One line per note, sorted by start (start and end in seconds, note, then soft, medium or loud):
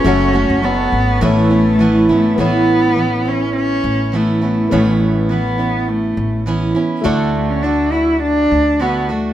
0.00 1.19 A3 medium
0.00 0.66 C#4 loud
0.00 2.35 C#5 medium
0.04 0.46 F#1 loud
0.04 0.34 F#2 medium
0.04 0.35 C#3 medium
0.04 0.35 F#3 medium
0.04 0.34 A3 medium
0.04 0.33 C#4 medium
0.04 1.20 F#4 medium
0.04 1.21 F#4 medium
0.04 0.32 F#4 medium
0.04 1.21 A4 medium
0.04 1.21 C#5 medium
0.04 2.37 A5 medium
0.33 0.61 F#3 soft
0.33 0.62 A3 medium
0.33 0.62 C#4 medium
0.33 0.63 F#4 medium
0.50 0.89 F#1 medium
0.62 1.21 F#3 medium
0.62 1.22 A3 medium
0.62 1.24 B3 medium
0.62 1.22 C#4 medium
0.62 1.22 F#4 medium
0.92 1.19 G#1 medium
1.21 2.05 A1 loud
1.21 1.50 A2 medium
1.21 1.51 E3 medium
1.21 2.09 A3 medium
1.21 2.34 B3 medium
1.21 1.51 B3 medium
1.21 1.49 C#4 medium
1.21 2.37 E4 medium
1.21 1.48 E4 medium
1.21 2.36 A4 soft
1.21 2.38 B4 medium
1.21 2.37 C#5 medium
1.49 1.79 B3 soft
1.49 1.79 C#4 soft
1.49 1.79 E4 soft
1.79 2.09 E3 medium
1.79 2.09 B3 medium
1.79 2.09 C#4 medium
1.79 2.08 E4 medium
2.09 2.36 G#1 medium
2.09 2.38 B3 soft
2.09 2.39 C#4 medium
2.09 2.38 E4 medium
2.14 2.39 A3 medium
2.36 3.80 A1 loud
2.36 2.97 A2 medium
2.36 2.94 E3 medium
2.36 4.66 B3 medium
2.36 2.96 B3 medium
2.36 2.97 C#4 medium
2.36 4.68 A4 soft
2.40 3.30 B3 medium
2.40 2.97 E4 medium
2.40 4.69 C#5 medium
2.96 3.25 E3 medium
2.96 3.26 B3 medium
2.96 3.25 C#4 soft
2.96 3.24 E4 medium
3.25 4.12 B3 soft
3.25 4.13 C#4 soft
3.25 3.55 C#4 medium
3.25 4.13 E4 soft
3.56 4.16 C#4 loud
3.84 4.67 A1 medium
4.12 4.42 E3 medium
4.12 4.71 A3 medium
4.12 4.42 B3 medium
4.12 4.41 C#4 medium
4.12 4.40 E4 medium
4.41 4.71 B3 soft
4.41 4.71 C#4 soft
4.41 4.71 E4 soft
4.68 6.14 A1 loud
4.68 5.30 A2 medium
4.68 5.28 E3 medium
4.68 4.99 A3 medium
4.68 6.99 B3 soft
4.68 5.29 B3 medium
4.68 5.30 C#4 medium
4.68 7.00 A4 medium
4.68 7.01 C#5 medium
4.73 5.31 E4 medium
5.01 5.32 A3 medium
5.29 5.59 E3 soft
5.29 5.90 B3 medium
5.29 5.59 B3 soft
5.29 5.58 C#4 soft
5.29 5.57 E4 medium
5.58 6.46 B3 soft
5.58 6.46 C#4 soft
5.58 6.46 E4 soft
5.88 6.47 A3 medium
6.17 6.72 A1 medium
6.46 6.75 E3 medium
6.46 6.76 B3 medium
6.46 6.75 C#4 medium
6.46 6.74 E4 medium
6.75 7.04 B3 soft
6.75 7.05 C#4 medium
6.75 7.04 E4 medium
7.01 8.47 D2 loud
7.01 7.62 D3 medium
7.01 9.32 A3 medium
7.01 7.64 A3 loud
7.01 7.63 D4 medium
7.01 9.33 F#4 medium
7.05 7.63 F#4 medium
7.05 9.33 D5 medium
7.34 7.52 A3 medium
7.50 7.64 C#4 medium
7.63 7.92 D3 soft
7.63 7.93 A3 medium
7.63 7.93 D4 medium
7.63 7.92 D4 medium
7.63 7.91 F#4 medium
7.92 8.80 A3 soft
7.92 8.80 D4 soft
7.92 8.21 E4 medium
7.92 8.80 F#4 soft
8.22 8.83 D4 loud
8.51 9.33 D2 medium
8.79 9.09 D3 medium
8.79 9.09 A3 medium
8.79 9.12 B3 medium
8.79 9.09 D4 medium
8.79 9.08 F#4 medium
9.09 9.33 A3 medium
9.09 9.33 A3 soft
9.09 9.33 D4 soft
9.09 9.33 F#4 medium